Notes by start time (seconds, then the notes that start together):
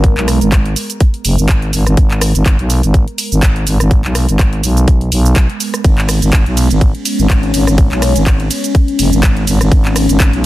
Already playing: G#1 G#3 B3 A#4
0.04 kick, closed hi-hat, shaker
0.17 B1, clap
0.28 cross-stick, open hi-hat, shaker
0.41 G#1, closed hi-hat, shaker
0.52 kick, clap, closed hi-hat, shaker
0.66 closed hi-hat
0.76 open hi-hat, shaker
0.90 closed hi-hat, shaker
1.00 kick, closed hi-hat, shaker
1.14 closed hi-hat
1.25 F#1, open hi-hat, shaker
1.38 G#1, shaker
1.49 kick, clap, closed hi-hat, shaker
1.62 closed hi-hat
1.73 G#1, open hi-hat, shaker
1.87 G#1, cross-stick, closed hi-hat, shaker
1.97 G#1, kick, closed hi-hat, shaker
2.11 clap
2.21 cross-stick, open hi-hat, shaker
2.35 G#1, closed hi-hat, shaker
2.46 kick, clap, closed hi-hat, shaker
2.59 B1, closed hi-hat
2.70 open hi-hat, shaker
2.83 G#1, closed hi-hat, shaker
2.94 kick, closed hi-hat, shaker
3.08 closed hi-hat
3.18 open hi-hat, shaker
3.32 G#1, shaker
3.43 kick, clap, closed hi-hat, shaker
3.56 closed hi-hat
3.67 G#1, open hi-hat, shaker
3.80 G#1, cross-stick, closed hi-hat, shaker
3.91 kick, closed hi-hat, shaker
4.04 B1, clap
4.15 cross-stick, open hi-hat, shaker
4.29 G#1, closed hi-hat, shaker
4.39 kick, clap, closed hi-hat, shaker
4.53 closed hi-hat
4.63 B1, open hi-hat, shaker
4.77 closed hi-hat, shaker
4.88 kick, closed hi-hat, shaker
5.01 closed hi-hat
5.12 B1, open hi-hat, shaker
5.26 shaker
5.36 kick, clap, closed hi-hat, shaker
5.50 closed hi-hat
5.60 open hi-hat, shaker
5.74 cross-stick, closed hi-hat, shaker
5.84 G#1 C#4, kick, closed hi-hat, ride, shaker
5.98 clap
6.09 cross-stick, open hi-hat, ride, shaker
6.22 G#1, closed hi-hat, shaker
6.33 kick, clap, closed hi-hat, ride, shaker
6.46 B1, closed hi-hat
6.57 open hi-hat, ride, shaker
6.71 G#1, closed hi-hat, shaker
6.81 kick, closed hi-hat, ride, shaker
6.95 closed hi-hat
7.05 open hi-hat, ride, shaker
7.19 G#1, shaker
7.30 kick, clap, closed hi-hat, ride, shaker
7.43 closed hi-hat
7.54 G#1, open hi-hat, ride, shaker
7.67 G#1, cross-stick, closed hi-hat, shaker
7.78 kick, closed hi-hat, ride, shaker
7.91 B1, clap
8.02 cross-stick, open hi-hat, ride, shaker
8.16 G#1, closed hi-hat, shaker
8.26 kick, clap, closed hi-hat, ride, shaker
8.40 closed hi-hat
8.51 open hi-hat, ride, shaker
8.64 closed hi-hat, shaker
8.75 kick, closed hi-hat, ride, shaker
8.88 closed hi-hat
8.99 F#1, open hi-hat, ride, shaker
9.12 G#1, shaker
9.23 kick, clap, closed hi-hat, ride, shaker
9.37 closed hi-hat
9.47 G#1, open hi-hat, ride, shaker
9.61 G#1, cross-stick, closed hi-hat, shaker
9.72 kick, closed hi-hat, ride, shaker
9.85 clap
9.96 cross-stick, open hi-hat, ride, shaker
10.09 G#1, closed hi-hat, shaker
10.20 kick, clap, closed hi-hat, ride, shaker
10.33 B1, closed hi-hat